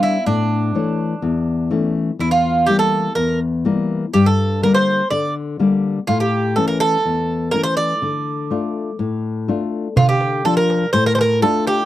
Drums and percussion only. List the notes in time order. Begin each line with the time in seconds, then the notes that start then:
9.97 darbuka dum
10.21 darbuka tek
10.45 darbuka tek
10.57 darbuka tek
10.70 darbuka tek
10.82 darbuka tek
10.94 darbuka tek
11.06 darbuka tek
11.19 darbuka tek
11.42 darbuka tek
11.67 darbuka tek